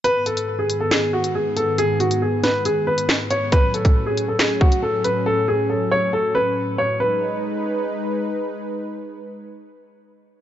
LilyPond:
<<
  \new Staff \with { instrumentName = "Grand piano" } { \time 4/4 \key gis \phrygian \tempo 4 = 138 b'8 a'8. gis'8 a'16 gis'8 fis'8 gis'8 a'8 | gis'8 fis'8 gis'8 b'8 gis'8 b'4 cis''8 | b'8 a'8. gis'8 a'16 gis'8 fis'8 a'8 b'8 | a'8 gis'8 a'8 cis''8 a'8 b'4 cis''8 |
b'2. r4 | r1 | }
  \new Staff \with { instrumentName = "Analog synth pad" } { \clef bass \time 4/4 \key gis \phrygian <gis, dis b>1~ | <gis, dis b>1 | <a, fis cis'>1~ | <a, fis cis'>1 |
<gis dis' b'>1~ | <gis dis' b'>1 | }
  \new DrumStaff \with { instrumentName = "Drums" } \drummode { \time 4/4 hh8 hh16 hh16 r8 hh8 <hc hh sn>8. hh16 r8 hh8 | hh8 hh16 hh16 r8 <hh sn>8 hh8. hh16 <hc sn>8 hh8 | <hh bd>8 hh16 <hh bd>16 r8 hh8 <hc hh sn>8 bd16 hh16 r8 hh8 | r4 r4 r4 r4 |
r4 r4 r4 r4 | r4 r4 r4 r4 | }
>>